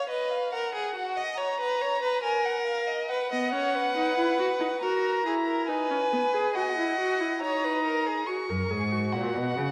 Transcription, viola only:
0, 0, Header, 1, 2, 480
1, 0, Start_track
1, 0, Key_signature, 5, "major"
1, 0, Tempo, 860832
1, 294, Time_signature, 3, 2, 24, 8
1, 5418, End_track
2, 0, Start_track
2, 0, Title_t, "Viola"
2, 0, Program_c, 0, 41
2, 1846, Note_on_c, 0, 59, 80
2, 1969, Note_on_c, 0, 61, 87
2, 1978, Note_off_c, 0, 59, 0
2, 2205, Note_off_c, 0, 61, 0
2, 2208, Note_on_c, 0, 63, 89
2, 2322, Note_off_c, 0, 63, 0
2, 2325, Note_on_c, 0, 64, 81
2, 2444, Note_off_c, 0, 64, 0
2, 2447, Note_on_c, 0, 66, 90
2, 2491, Note_off_c, 0, 66, 0
2, 2564, Note_on_c, 0, 63, 81
2, 2609, Note_off_c, 0, 63, 0
2, 2687, Note_on_c, 0, 66, 96
2, 2923, Note_off_c, 0, 66, 0
2, 2928, Note_on_c, 0, 64, 89
2, 3169, Note_on_c, 0, 63, 86
2, 3178, Note_off_c, 0, 64, 0
2, 3289, Note_off_c, 0, 63, 0
2, 3292, Note_on_c, 0, 61, 76
2, 3337, Note_off_c, 0, 61, 0
2, 3414, Note_on_c, 0, 59, 80
2, 3459, Note_off_c, 0, 59, 0
2, 3534, Note_on_c, 0, 68, 88
2, 3656, Note_on_c, 0, 66, 84
2, 3664, Note_off_c, 0, 68, 0
2, 3773, Note_off_c, 0, 66, 0
2, 3776, Note_on_c, 0, 64, 78
2, 3889, Note_off_c, 0, 64, 0
2, 3892, Note_on_c, 0, 66, 92
2, 4017, Note_on_c, 0, 64, 79
2, 4026, Note_off_c, 0, 66, 0
2, 4138, Note_on_c, 0, 63, 97
2, 4146, Note_off_c, 0, 64, 0
2, 4610, Note_off_c, 0, 63, 0
2, 4613, Note_on_c, 0, 66, 69
2, 4734, Note_on_c, 0, 70, 69
2, 4742, Note_off_c, 0, 66, 0
2, 4855, Note_on_c, 0, 68, 67
2, 4863, Note_off_c, 0, 70, 0
2, 4971, Note_on_c, 0, 66, 66
2, 4979, Note_off_c, 0, 68, 0
2, 5418, Note_off_c, 0, 66, 0
2, 5418, End_track
0, 0, End_of_file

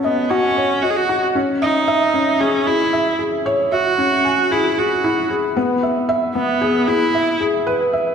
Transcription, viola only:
0, 0, Header, 1, 2, 480
1, 0, Start_track
1, 0, Tempo, 526316
1, 1233, Time_signature, 4, 2, 24, 8
1, 7431, End_track
2, 0, Start_track
2, 0, Title_t, "Viola"
2, 0, Program_c, 0, 41
2, 35, Note_on_c, 0, 59, 69
2, 270, Note_on_c, 0, 61, 80
2, 284, Note_off_c, 0, 59, 0
2, 749, Note_on_c, 0, 66, 78
2, 762, Note_off_c, 0, 61, 0
2, 820, Note_on_c, 0, 68, 68
2, 834, Note_off_c, 0, 66, 0
2, 878, Note_on_c, 0, 66, 77
2, 892, Note_off_c, 0, 68, 0
2, 1111, Note_off_c, 0, 66, 0
2, 1477, Note_on_c, 0, 63, 84
2, 2194, Note_on_c, 0, 61, 79
2, 2208, Note_off_c, 0, 63, 0
2, 2435, Note_on_c, 0, 64, 78
2, 2449, Note_off_c, 0, 61, 0
2, 2914, Note_off_c, 0, 64, 0
2, 3395, Note_on_c, 0, 66, 99
2, 4120, Note_on_c, 0, 64, 88
2, 4134, Note_off_c, 0, 66, 0
2, 4362, Note_on_c, 0, 66, 75
2, 4376, Note_off_c, 0, 64, 0
2, 4838, Note_off_c, 0, 66, 0
2, 5791, Note_on_c, 0, 59, 76
2, 6272, Note_on_c, 0, 64, 89
2, 6286, Note_off_c, 0, 59, 0
2, 6752, Note_off_c, 0, 64, 0
2, 7431, End_track
0, 0, End_of_file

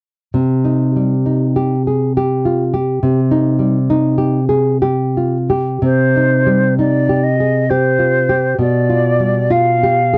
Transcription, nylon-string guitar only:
0, 0, Header, 1, 2, 480
1, 0, Start_track
1, 0, Key_signature, -3, "minor"
1, 0, Tempo, 917431
1, 173, Time_signature, 3, 2, 24, 8
1, 1131, Tempo, 863309
1, 2091, Tempo, 964630
1, 3531, Tempo, 910470
1, 5322, End_track
2, 0, Start_track
2, 0, Title_t, "Nylon-string guitar"
2, 0, Program_c, 0, 24
2, 178, Note_on_c, 0, 48, 46
2, 338, Note_on_c, 0, 63, 36
2, 504, Note_on_c, 0, 55, 35
2, 595, Note_off_c, 0, 63, 0
2, 659, Note_on_c, 0, 63, 36
2, 757, Note_off_c, 0, 55, 0
2, 817, Note_on_c, 0, 67, 34
2, 913, Note_off_c, 0, 63, 0
2, 978, Note_off_c, 0, 67, 0
2, 980, Note_on_c, 0, 68, 29
2, 1133, Note_off_c, 0, 68, 0
2, 1136, Note_on_c, 0, 67, 40
2, 1293, Note_on_c, 0, 65, 32
2, 1392, Note_off_c, 0, 67, 0
2, 1451, Note_on_c, 0, 67, 40
2, 1453, Note_off_c, 0, 65, 0
2, 1592, Note_off_c, 0, 48, 0
2, 1613, Note_on_c, 0, 48, 52
2, 1704, Note_off_c, 0, 67, 0
2, 1771, Note_on_c, 0, 63, 43
2, 1926, Note_on_c, 0, 55, 45
2, 2026, Note_off_c, 0, 63, 0
2, 2097, Note_on_c, 0, 63, 41
2, 2180, Note_off_c, 0, 55, 0
2, 2236, Note_on_c, 0, 67, 40
2, 2337, Note_off_c, 0, 63, 0
2, 2388, Note_off_c, 0, 67, 0
2, 2390, Note_on_c, 0, 68, 37
2, 2552, Note_off_c, 0, 68, 0
2, 2554, Note_on_c, 0, 67, 48
2, 2729, Note_on_c, 0, 65, 32
2, 2828, Note_off_c, 0, 67, 0
2, 2892, Note_on_c, 0, 67, 40
2, 2900, Note_off_c, 0, 65, 0
2, 3043, Note_off_c, 0, 48, 0
2, 3052, Note_on_c, 0, 48, 47
2, 3059, Note_off_c, 0, 67, 0
2, 3223, Note_on_c, 0, 63, 36
2, 3374, Note_on_c, 0, 55, 39
2, 3471, Note_off_c, 0, 63, 0
2, 3535, Note_on_c, 0, 63, 33
2, 3627, Note_off_c, 0, 55, 0
2, 3695, Note_on_c, 0, 67, 35
2, 3792, Note_off_c, 0, 63, 0
2, 3855, Note_off_c, 0, 67, 0
2, 3858, Note_on_c, 0, 68, 27
2, 4015, Note_off_c, 0, 68, 0
2, 4018, Note_on_c, 0, 67, 39
2, 4167, Note_on_c, 0, 65, 29
2, 4268, Note_off_c, 0, 67, 0
2, 4327, Note_off_c, 0, 65, 0
2, 4327, Note_on_c, 0, 67, 36
2, 4461, Note_off_c, 0, 48, 0
2, 4482, Note_on_c, 0, 47, 41
2, 4486, Note_off_c, 0, 67, 0
2, 4645, Note_on_c, 0, 65, 37
2, 4805, Note_on_c, 0, 55, 36
2, 4902, Note_off_c, 0, 65, 0
2, 4966, Note_on_c, 0, 65, 37
2, 5064, Note_off_c, 0, 55, 0
2, 5139, Note_on_c, 0, 67, 38
2, 5226, Note_off_c, 0, 65, 0
2, 5299, Note_on_c, 0, 68, 31
2, 5322, Note_off_c, 0, 47, 0
2, 5322, Note_off_c, 0, 67, 0
2, 5322, Note_off_c, 0, 68, 0
2, 5322, End_track
0, 0, End_of_file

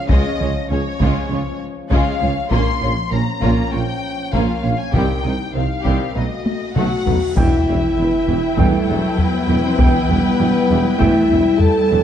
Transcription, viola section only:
0, 0, Header, 1, 2, 480
1, 0, Start_track
1, 0, Tempo, 606061
1, 73, Time_signature, 4, 2, 24, 8
1, 9532, End_track
2, 0, Start_track
2, 0, Title_t, "Viola section"
2, 0, Program_c, 0, 48
2, 75, Note_on_c, 0, 61, 52
2, 77, Note_on_c, 0, 56, 57
2, 297, Note_off_c, 0, 61, 0
2, 299, Note_off_c, 0, 56, 0
2, 317, Note_on_c, 0, 56, 49
2, 318, Note_on_c, 0, 61, 37
2, 381, Note_off_c, 0, 56, 0
2, 382, Note_off_c, 0, 61, 0
2, 552, Note_on_c, 0, 56, 42
2, 552, Note_on_c, 0, 61, 45
2, 615, Note_off_c, 0, 61, 0
2, 616, Note_off_c, 0, 56, 0
2, 797, Note_on_c, 0, 61, 54
2, 798, Note_on_c, 0, 56, 55
2, 1018, Note_off_c, 0, 61, 0
2, 1019, Note_off_c, 0, 56, 0
2, 1037, Note_on_c, 0, 61, 40
2, 1040, Note_on_c, 0, 56, 38
2, 1101, Note_off_c, 0, 61, 0
2, 1103, Note_off_c, 0, 56, 0
2, 1512, Note_on_c, 0, 56, 58
2, 1513, Note_on_c, 0, 61, 66
2, 1736, Note_off_c, 0, 56, 0
2, 1736, Note_off_c, 0, 61, 0
2, 1752, Note_on_c, 0, 56, 44
2, 1753, Note_on_c, 0, 61, 46
2, 1815, Note_off_c, 0, 56, 0
2, 1816, Note_off_c, 0, 61, 0
2, 1988, Note_on_c, 0, 58, 52
2, 1992, Note_on_c, 0, 61, 56
2, 2213, Note_off_c, 0, 58, 0
2, 2216, Note_off_c, 0, 61, 0
2, 2227, Note_on_c, 0, 58, 42
2, 2231, Note_on_c, 0, 61, 39
2, 2290, Note_off_c, 0, 58, 0
2, 2294, Note_off_c, 0, 61, 0
2, 2473, Note_on_c, 0, 61, 39
2, 2475, Note_on_c, 0, 58, 40
2, 2536, Note_off_c, 0, 61, 0
2, 2538, Note_off_c, 0, 58, 0
2, 2706, Note_on_c, 0, 61, 53
2, 2708, Note_on_c, 0, 58, 55
2, 2932, Note_off_c, 0, 61, 0
2, 2933, Note_off_c, 0, 58, 0
2, 2942, Note_on_c, 0, 61, 37
2, 2945, Note_on_c, 0, 58, 41
2, 3005, Note_off_c, 0, 61, 0
2, 3009, Note_off_c, 0, 58, 0
2, 3435, Note_on_c, 0, 61, 50
2, 3437, Note_on_c, 0, 58, 49
2, 3657, Note_off_c, 0, 61, 0
2, 3658, Note_off_c, 0, 58, 0
2, 3673, Note_on_c, 0, 58, 37
2, 3674, Note_on_c, 0, 61, 34
2, 3736, Note_off_c, 0, 58, 0
2, 3738, Note_off_c, 0, 61, 0
2, 3915, Note_on_c, 0, 60, 49
2, 3918, Note_on_c, 0, 51, 48
2, 4137, Note_off_c, 0, 60, 0
2, 4139, Note_off_c, 0, 51, 0
2, 4154, Note_on_c, 0, 60, 31
2, 4156, Note_on_c, 0, 51, 30
2, 4217, Note_off_c, 0, 60, 0
2, 4219, Note_off_c, 0, 51, 0
2, 4397, Note_on_c, 0, 60, 33
2, 4399, Note_on_c, 0, 51, 34
2, 4461, Note_off_c, 0, 60, 0
2, 4462, Note_off_c, 0, 51, 0
2, 4637, Note_on_c, 0, 51, 48
2, 4637, Note_on_c, 0, 60, 47
2, 4858, Note_off_c, 0, 51, 0
2, 4858, Note_off_c, 0, 60, 0
2, 4871, Note_on_c, 0, 54, 35
2, 4873, Note_on_c, 0, 57, 31
2, 4935, Note_off_c, 0, 54, 0
2, 4936, Note_off_c, 0, 57, 0
2, 5357, Note_on_c, 0, 57, 44
2, 5358, Note_on_c, 0, 54, 44
2, 5579, Note_off_c, 0, 54, 0
2, 5579, Note_off_c, 0, 57, 0
2, 5592, Note_on_c, 0, 54, 37
2, 5592, Note_on_c, 0, 57, 31
2, 5655, Note_off_c, 0, 54, 0
2, 5655, Note_off_c, 0, 57, 0
2, 5837, Note_on_c, 0, 52, 58
2, 5840, Note_on_c, 0, 64, 52
2, 6058, Note_off_c, 0, 52, 0
2, 6077, Note_on_c, 0, 52, 47
2, 6141, Note_off_c, 0, 52, 0
2, 6311, Note_on_c, 0, 52, 42
2, 6374, Note_off_c, 0, 52, 0
2, 6559, Note_on_c, 0, 52, 41
2, 6623, Note_off_c, 0, 52, 0
2, 6792, Note_on_c, 0, 52, 58
2, 7015, Note_off_c, 0, 52, 0
2, 7036, Note_on_c, 0, 52, 46
2, 7100, Note_off_c, 0, 52, 0
2, 7510, Note_on_c, 0, 52, 48
2, 7574, Note_off_c, 0, 52, 0
2, 7751, Note_on_c, 0, 52, 58
2, 7975, Note_off_c, 0, 52, 0
2, 8002, Note_on_c, 0, 52, 50
2, 8065, Note_off_c, 0, 52, 0
2, 8233, Note_on_c, 0, 52, 53
2, 8296, Note_off_c, 0, 52, 0
2, 8475, Note_on_c, 0, 52, 48
2, 8538, Note_off_c, 0, 52, 0
2, 8704, Note_on_c, 0, 52, 63
2, 8932, Note_off_c, 0, 52, 0
2, 8951, Note_on_c, 0, 52, 52
2, 9014, Note_off_c, 0, 52, 0
2, 9429, Note_on_c, 0, 52, 55
2, 9492, Note_off_c, 0, 52, 0
2, 9532, Note_off_c, 0, 64, 0
2, 9532, End_track
0, 0, End_of_file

